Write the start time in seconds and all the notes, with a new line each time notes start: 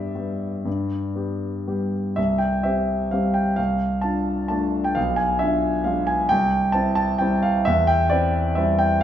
Already playing: G2 B3 G4 D5 E5
0.15 G3 B3 G4
0.65 G2
1.15 B3 G4
1.67 G3 B3 G4
2.16 C2 E5
2.38 G5
2.63 C4 G4 E5
3.11 G3 C4 G4 F5
3.34 G5
3.56 C2 F5
4.01 D4 F4 A5
4.48 A3 D4 F4 A5
4.84 G5
4.95 B1 F5
5.16 G#5
5.39 D4 F4 E5
5.84 G#3 D4 F4 F5
6.07 G#5
6.29 C2 G5
6.72 C4 E4 A5
6.95 A5
7.18 G3 C4 E4 G5
7.43 F5
7.65 E2 E5
7.87 G5
8.10 C4 E4 D5
8.55 G3 C4 E4 E5
8.79 G5